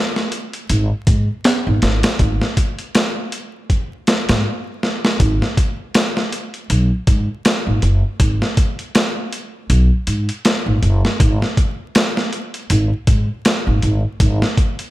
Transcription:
0.16 snare medium
0.32 closed hi-hat medium
0.53 closed hi-hat soft
0.69 0.89 G#1 loud
0.69 closed hi-hat medium
1.07 1.26 G#2 medium
1.07 kick medium
1.07 closed hi-hat medium
1.44 snare loud
1.44 closed hi-hat medium
1.67 1.81 G#1 medium
1.82 2.01 G#1 medium
1.82 snare medium
1.82 closed hi-hat medium
2.03 snare loud
2.03 closed hi-hat medium
2.19 2.39 G#1 medium
2.19 kick loud
2.19 closed hi-hat medium
2.42 snare soft
2.57 kick medium
2.57 closed hi-hat medium
2.79 closed hi-hat soft
2.95 snare loud
2.95 closed hi-hat medium
3.32 closed hi-hat medium
3.70 kick medium
3.70 closed hi-hat medium
4.07 snare loud
4.07 closed hi-hat medium
4.29 4.45 G#2 medium
4.29 snare loud
4.29 closed hi-hat medium
4.83 snare medium
5.05 snare medium
5.20 5.39 G#1 loud
5.20 kick loud
5.20 closed hi-hat medium
5.42 snare soft
5.57 kick loud
5.57 closed hi-hat medium
5.95 snare loud
5.95 closed hi-hat medium
6.17 snare medium
6.33 closed hi-hat medium
6.54 closed hi-hat soft
6.70 6.89 B1 medium
6.70 closed hi-hat medium
7.07 7.26 G#2 medium
7.07 kick medium
7.07 closed hi-hat medium
7.45 snare loud
7.45 closed hi-hat medium
7.67 7.81 G#1 medium
7.82 8.01 F#1 medium
7.82 closed hi-hat medium
8.20 8.39 G#1 medium
8.20 kick loud
8.20 closed hi-hat medium
8.42 snare medium
8.57 kick loud
8.57 closed hi-hat medium
8.79 closed hi-hat soft
8.95 snare loud
8.95 closed hi-hat medium
9.32 closed hi-hat medium
9.70 9.89 B1 loud
9.70 closed hi-hat medium
10.07 10.26 G#2 medium
10.07 closed hi-hat medium
10.29 closed hi-hat soft
10.45 snare loud
10.45 closed hi-hat medium
10.66 10.80 G#1 medium
10.82 11.01 F#1 medium
10.82 closed hi-hat medium
11.05 snare medium
11.20 11.39 G#1 loud
11.20 kick loud
11.20 closed hi-hat medium
11.42 snare soft
11.57 kick loud
11.57 closed hi-hat medium
11.95 snare loud
11.95 closed hi-hat medium
12.17 snare medium
12.33 closed hi-hat medium
12.54 closed hi-hat soft
12.70 12.89 G#1 loud
12.70 closed hi-hat medium
13.07 13.26 G#2 medium
13.07 kick loud
13.07 closed hi-hat medium
13.45 snare loud
13.45 closed hi-hat medium
13.67 13.81 G#1 medium
13.82 14.01 G#1 medium
13.82 closed hi-hat medium
14.20 14.39 G#1 loud
14.20 kick loud
14.20 closed hi-hat medium
14.42 snare medium
14.57 kick loud
14.57 closed hi-hat medium
14.79 closed hi-hat soft

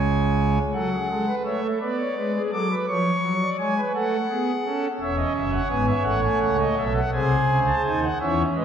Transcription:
0.00 0.59 C#2 medium
0.00 0.58 C#3 medium
0.00 0.58 G#3 medium
0.00 0.59 C#5 medium
0.00 0.59 G#5 medium
0.73 0.96 F#3 medium
0.73 0.89 A4 medium
0.73 1.35 F#5 medium
0.92 1.07 G#4 soft
1.09 1.32 G#3 soft
1.09 1.25 A4 medium
1.27 1.43 B4 medium
1.44 1.67 A3 medium
1.44 1.60 C#5 medium
1.44 1.67 E5 medium
1.62 1.78 A4 medium
1.80 2.03 B3 medium
1.80 1.96 B4 medium
1.80 2.42 D5 medium
1.98 2.14 C#5 medium
2.16 2.39 G#3 medium
2.16 2.32 B4 medium
2.36 2.51 G#4 medium
2.52 2.74 F#3 medium
2.52 2.67 A4 medium
2.52 2.75 D6 medium
2.71 2.86 B4 medium
2.88 3.11 F3 medium
2.88 3.34 C#5 medium
2.88 3.50 C#6 medium
3.22 3.45 F#3 medium
3.41 3.57 D5 medium
3.58 3.81 G#3 medium
3.58 3.74 C#5 medium
3.58 3.81 G#5 medium
3.77 3.92 B4 medium
3.94 4.17 A3 medium
3.94 4.17 A4 medium
3.94 4.86 F#5 medium
4.30 4.52 B3 medium
4.30 4.52 G#4 medium
4.66 4.88 C#4 medium
4.66 4.88 A4 medium
5.00 5.22 E1 medium
5.00 5.23 E2 medium
5.00 5.62 C#4 medium
5.00 6.84 C#5 medium
5.00 5.16 E5 medium
5.17 5.33 D#5 medium
5.35 5.58 F#1 medium
5.35 5.57 F#2 medium
5.35 5.51 E5 medium
5.52 5.68 F#5 medium
5.70 5.92 G#1 medium
5.70 5.93 G#2 medium
5.70 5.92 B3 medium
5.70 5.86 G#5 medium
5.87 6.03 E5 medium
6.03 6.27 A1 medium
6.03 6.27 A2 medium
6.03 6.66 A3 medium
6.03 6.20 F#5 medium
6.23 6.39 G#5 medium
6.40 6.63 C#2 medium
6.40 6.63 C#3 medium
6.40 6.57 F#5 medium
6.59 6.75 D#5 medium
6.78 7.00 B1 medium
6.78 7.00 B2 medium
6.78 7.00 A4 medium
6.78 6.93 E5 medium
6.95 7.10 F#5 medium
7.13 7.35 C2 medium
7.13 7.35 C3 medium
7.13 7.75 G#4 medium
7.13 8.05 C5 medium
7.13 7.59 G#5 medium
7.49 7.71 C#2 medium
7.49 7.71 C#3 medium
7.67 7.82 A5 medium
7.85 8.07 D#2 medium
7.85 8.07 D#3 medium
7.85 8.08 D#4 medium
7.85 8.00 G#5 medium
8.03 8.18 F#5 medium
8.20 8.43 E2 medium
8.20 8.43 E3 medium
8.20 8.65 C#4 medium
8.20 8.43 C#5 medium
8.20 8.43 E5 medium
8.56 8.65 G#2 medium
8.56 8.65 G#3 medium
8.56 8.65 B4 medium
8.56 8.65 D#5 medium

